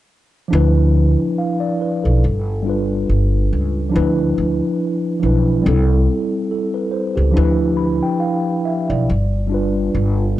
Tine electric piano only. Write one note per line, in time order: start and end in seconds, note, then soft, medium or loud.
0.48 0.95 F3 loud
0.48 0.96 D4 medium
0.52 0.97 E4 medium
0.52 0.96 B4 loud
1.38 1.60 F5 medium
1.60 1.79 D5 medium
1.81 2.03 B4 medium
2.04 2.44 A4 medium
2.62 3.54 G3 medium
2.62 3.55 D4 medium
2.67 3.56 F4 medium
2.67 3.57 B4 medium
3.89 4.81 F3 medium
3.89 4.82 D4 medium
3.94 4.84 E4 medium
3.94 4.85 B4 loud
5.20 5.64 F3 medium
5.20 5.65 D4 medium
5.24 5.66 E4 medium
5.24 5.67 B4 medium
5.62 7.02 G3 medium
5.62 7.03 C4 medium
5.66 5.73 D4 medium
5.66 6.50 A4 medium
5.73 7.07 E4 medium
6.51 6.74 A4 medium
6.74 6.93 B4 medium
6.92 7.15 C5 medium
7.16 7.57 G4 medium
7.31 7.79 F3 loud
7.31 7.80 D4 medium
7.36 7.81 E4 medium
7.36 7.83 B4 loud
7.77 8.01 B5 medium
8.03 8.21 G5 medium
8.20 8.62 F5 medium
8.65 8.88 E5 medium
8.90 9.30 D5 medium
9.47 10.39 G3 medium
9.47 10.40 D4 medium
9.52 10.40 F4 medium
9.52 10.40 B4 medium